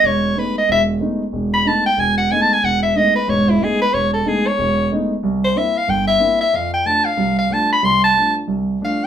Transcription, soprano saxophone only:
X:1
M:4/4
L:1/8
Q:"Swing" 1/4=185
K:Alyd
V:1 name="Soprano saxophone"
c2 B d e z3 | z b a =g ^g f (3g a g | f e d B c E G B | c A G c3 z2 |
z =c e =f =g e2 e | [K:Flyd] f g a f2 f a b | c' a2 z3 f z |]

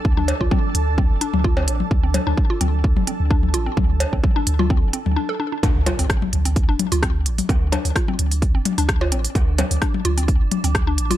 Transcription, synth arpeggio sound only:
X:1
M:4/4
L:1/16
Q:"Swing 16ths" 1/4=129
K:C
V:1 name="Synth arpeggio sound"
z D z F C z3 C z D z F C z2 | z C z D z F C z3 C z D z F C | z3 C z D z F C z C z D A D D | D z F C z3 C z D z F C z3 |
C z D z F C z3 C z D z F C z | z2 C z D z F C z3 C z D z F |]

